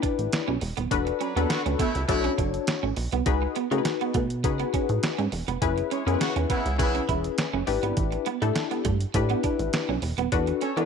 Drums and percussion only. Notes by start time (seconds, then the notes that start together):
0.03 kick, closed hi-hat
0.19 closed hi-hat
0.33 snare, closed hi-hat
0.61 open hi-hat
0.77 closed hi-hat
0.91 kick, closed hi-hat
1.07 closed hi-hat
1.21 closed hi-hat
1.37 closed hi-hat
1.50 snare, closed hi-hat
1.66 closed hi-hat
1.79 kick, closed hi-hat
1.95 closed hi-hat
2.09 kick, closed hi-hat
2.24 closed hi-hat
2.38 kick, closed hi-hat
2.54 closed hi-hat
2.67 snare, closed hi-hat
2.97 open hi-hat
3.12 closed hi-hat
3.26 kick, closed hi-hat
3.56 closed hi-hat
3.72 closed hi-hat
3.85 snare, closed hi-hat
4.01 closed hi-hat
4.14 kick, closed hi-hat
4.30 closed hi-hat
4.44 kick, closed hi-hat
4.59 closed hi-hat
4.74 kick, closed hi-hat
4.89 closed hi-hat
5.03 snare, closed hi-hat
5.19 closed hi-hat
5.32 open hi-hat
5.48 closed hi-hat
5.62 kick, closed hi-hat
5.78 closed hi-hat
5.91 closed hi-hat
6.08 closed hi-hat
6.21 snare, closed hi-hat
6.36 closed hi-hat
6.50 kick, closed hi-hat
6.66 closed hi-hat
6.79 kick, closed hi-hat
6.95 closed hi-hat
7.09 kick, closed hi-hat
7.24 closed hi-hat
7.38 snare, closed hi-hat
7.67 open hi-hat
7.83 closed hi-hat
7.97 kick, closed hi-hat
8.12 closed hi-hat
8.26 closed hi-hat
8.42 closed hi-hat
8.55 snare, closed hi-hat
8.71 closed hi-hat
8.85 kick, closed hi-hat
9.00 closed hi-hat
9.14 kick, closed hi-hat
9.30 closed hi-hat
9.44 kick, closed hi-hat
9.59 closed hi-hat
9.73 snare, closed hi-hat
10.02 open hi-hat
10.18 closed hi-hat
10.32 kick, closed hi-hat
10.47 closed hi-hat
10.61 closed hi-hat
10.77 closed hi-hat